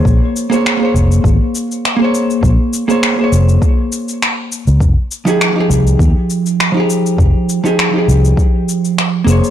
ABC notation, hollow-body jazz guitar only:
X:1
M:4/4
L:1/16
Q:"Swing 16ths" 1/4=101
K:Bbdor
V:1 name="Hollow-body jazz guitar"
[B,Acd]3 [B,Acd]2 [B,Acd]8 [B,Acd]3- | [B,Acd]3 [B,Acd]2 [B,Acd]8- [B,Acd]3 | z3 [F,EGA]2 [F,EGA]8 [F,EGA]3- | [F,EGA]3 [F,EGA]2 [F,EGA]8- [F,EGA] [B,Acd]2 |]